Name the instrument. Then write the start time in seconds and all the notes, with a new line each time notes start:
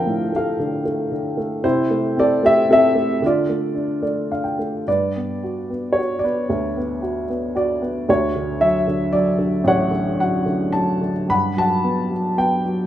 upright piano
Already playing: D3 F3 A3 C4 F4 A4 A#4 C5 D5 F5 G5 A5
0.06 A2
0.32 A3 F5
0.36 A4
0.59 D3
0.85 A3
1.12 D3
1.37 A3
1.64 C3 E4 C5
1.91 A3
2.17 C4 A4 D5
2.43 A3 G4 E5
2.69 C4 A4 E5
2.95 A3
3.22 D3 F4
3.26 D5
3.49 A3
3.75 D4
4.02 A3 D5
4.31 D4 F5
4.44 G5
4.59 A3
4.88 G2 B4 D5
5.17 B3
5.43 F#4
5.70 B3
5.93 C#5
5.98 F#4
6.19 D5
6.24 B3 B4
6.49 D2
6.77 B3
7.02 F#4
7.30 B3
7.55 F#4 D5
7.82 B3
8.09 D2 F#4 C#5
8.36 D3
8.61 F#3 E5
8.87 D3
9.13 F#3 D5
9.38 D3
9.64 A1 C#5 F#5
9.91 D3
10.19 F#3 F#5
10.46 D3
10.73 F#3 A5
11.01 D3
11.29 G2 F#5 B5
11.57 F#3 A5
11.61 F#5
11.84 B3
12.12 F#3
12.38 B3 G5
12.65 F#3